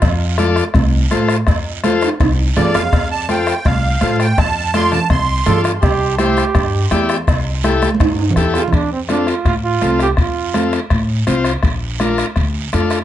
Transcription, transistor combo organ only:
X:1
M:4/4
L:1/8
Q:1/4=166
K:F
V:1 name="Transistor combo organ"
z2 [FAd] z3 [FAc] z | z2 [FAc] z3 [FAd] z | z2 [FAc] z3 [FAc] z | z2 [FAd] z3 [FAd] z |
z2 [EGc] z3 [EGd] z | z2 [EGA] z3 [EGA] z | z2 [CFA] z3 [CFA] z | z2 [CFA] z3 [CFc] z |
z2 [DFB] z3 [DFA] z |]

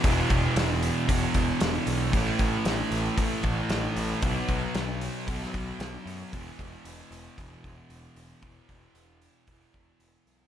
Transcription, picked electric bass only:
X:1
M:4/4
L:1/8
Q:1/4=114
K:E
V:1 name="Picked electric bass" clef=bass
E,,, E,,, E,,,2 E,,, E,,, E,,, B,,, | A,,, A,,, A,,, A,,, A,,, A,,, A,,, A,,, | B,,, B,,, B,,,2 B,,, B,,, B,,, F,, | E,,, E,,, E,,, E,,, E,,, E,,, E,,, E,,, |
E,,, E,,, E,,,2 E,,, E,,, E,,, B,,, |]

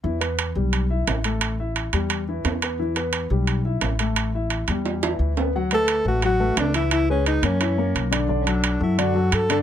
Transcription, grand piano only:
X:1
M:4/4
L:1/8
Q:1/4=174
K:Amix
V:1 name="Grand piano"
[E,E] [B,B]2 [G,G]2 [Ee]2 [A,A]- | [A,A] [Ee]2 [G,G]2 [E,E]2 [B,B] | [E,E] [B,B]2 [G,G]2 [Ee]2 [A,A]- | [A,A] [Ee]2 [G,G]2 [E,E]2 [B,B] |
[F,Ff] [A,AB]2 [A,AB] [F,Ff] [A,AB]2 [E,Ee]- | [E,Ee] [^G,^GB]2 [_B,_Bc] [E,Ee] [^A,^Ac]2 [D,Dd] | [D,Dd] [F,FA]2 [F,FA] [D,Dd] [F,FA]2 [D,Dd] |]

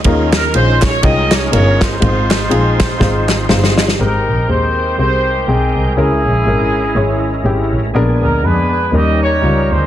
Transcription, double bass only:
X:1
M:4/4
L:1/8
Q:"Swing" 1/4=122
K:Ab
V:1 name="Double bass" clef=bass
E,,2 B,,,2 C,,2 G,,,2 | A,,,2 B,,,2 A,,,2 G,,,2 | A,,, B,,, E,,2 C,,2 _C,, =C,, | D,, B,,, A,,,2 A,,,2 A,,, =A,,, |
B,,, =D,, F,,2 E,,2 _D,, =D,, |]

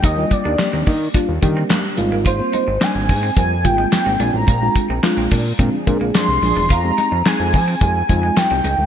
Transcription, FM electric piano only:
X:1
M:4/4
L:1/16
Q:1/4=108
K:Fdor
V:1 name="FM electric piano"
z [G,B,DF]2 z [G,B,DG]2 z2 [G,B,DF] z [G,B,DG]4 [G,B,CF]2 | z [G,B,CF]2 z [G,B,CD]2 z2 [G,B,CF] z [G,B,CF]4 [A,CDF]2 | z [A,CDF]2 z [A,CDF]2 z2 [A,CDF] z [A,CDA]4 z2 | z [A,CEG]2 z [A,CEA]2 z2 [A,CEG] z [A,CEF]4 z2 |]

